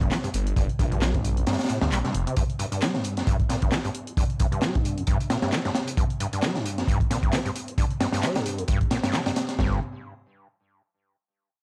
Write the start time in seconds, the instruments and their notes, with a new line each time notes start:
0.01 detuned saw bass F1, acid bass G2, kick, closed hi-hat
0.11 acid bass G3, snare, clap, closed hi-hat
0.24 acid bass G2, closed hi-hat
0.34 detuned saw bass G1, closed hi-hat
0.47 closed hi-hat
0.56 detuned saw bass G1, acid bass G2, kick, closed hi-hat
0.69 closed hi-hat
0.79 detuned saw bass A#1, acid bass G2, kick, closed hi-hat
0.91 acid bass G2, closed hi-hat
1.01 acid bass G3, snare, clap, closed hi-hat
1.14 acid bass G2, kick, closed hi-hat
1.25 closed hi-hat
1.37 acid bass F2, closed hi-hat
1.47 acid bass G2, snare, closed hi-hat
1.53 snare, closed hi-hat
1.59 snare, closed hi-hat
1.64 snare, closed hi-hat
1.69 acid bass A2, snare, closed hi-hat
1.81 detuned saw bass D2, acid bass G2, snare, closed hi-hat
1.92 detuned saw bass A#1, acid bass G3, clap, closed hi-hat
2.04 detuned saw bass G2, acid bass C3, snare, closed hi-hat
2.14 detuned saw bass F1, closed hi-hat
2.27 acid bass C3, closed hi-hat
2.36 acid bass G2, kick, closed hi-hat
2.50 closed hi-hat
2.59 acid bass G2, closed hi-hat
2.72 acid bass G2, closed hi-hat
2.81 acid bass G3, snare, clap, closed hi-hat
2.94 acid bass G2, snare, closed hi-hat
3.04 closed hi-hat
3.17 acid bass F2, snare, closed hi-hat
3.27 acid bass G2, kick, closed hi-hat
3.40 kick, closed hi-hat
3.49 acid bass A#2, snare, closed hi-hat
3.62 acid bass G2, kick, closed hi-hat
3.72 acid bass G3, snare, clap, closed hi-hat
3.84 acid bass G2, closed hi-hat
3.95 closed hi-hat
4.07 closed hi-hat
4.17 acid bass G2, kick, closed hi-hat
4.30 closed hi-hat
4.40 acid bass G2, kick, closed hi-hat
4.52 acid bass G2, closed hi-hat
4.62 acid bass G3, snare, clap, closed hi-hat
4.74 acid bass G2, kick, closed hi-hat
4.85 closed hi-hat
4.97 acid bass F2, closed hi-hat
5.07 acid bass G2, kick, closed hi-hat
5.20 closed hi-hat
5.30 acid bass A#2, snare, closed hi-hat
5.42 acid bass G2, snare, closed hi-hat
5.52 acid bass G3, snare, clap, closed hi-hat
5.65 acid bass G2, snare, closed hi-hat
5.75 snare, closed hi-hat
5.88 closed hi-hat
5.97 acid bass G2, kick, closed hi-hat
6.10 closed hi-hat
6.20 acid bass G2, closed hi-hat
6.33 acid bass G2, closed hi-hat
6.43 acid bass G3, snare, clap, closed hi-hat
6.55 acid bass G2, snare, closed hi-hat
6.66 closed hi-hat
6.78 acid bass F2, snare, closed hi-hat
6.88 acid bass G2, kick, closed hi-hat
7.00 kick, closed hi-hat
7.10 acid bass A#2, snare, closed hi-hat
7.23 acid bass G2, kick, closed hi-hat
7.32 acid bass G3, snare, clap, closed hi-hat
7.45 acid bass G2, closed hi-hat
7.56 closed hi-hat
7.68 closed hi-hat
7.78 acid bass G2, kick, closed hi-hat
7.91 closed hi-hat
8.00 acid bass G2, snare, closed hi-hat
8.13 acid bass G2, snare, closed hi-hat
8.23 acid bass G3, snare, clap, closed hi-hat
8.35 acid bass G2, snare, closed hi-hat
8.46 closed hi-hat
8.58 acid bass F2, closed hi-hat
8.68 acid bass G2, kick, closed hi-hat
8.81 kick, closed hi-hat
8.91 acid bass A#2, snare, closed hi-hat
9.03 acid bass G2, snare, closed hi-hat
9.13 acid bass G3, snare, clap, closed hi-hat
9.26 acid bass G2, snare, closed hi-hat
9.36 snare, closed hi-hat
9.49 snare, closed hi-hat
9.59 detuned saw bass G1, acid bass G2, kick, snare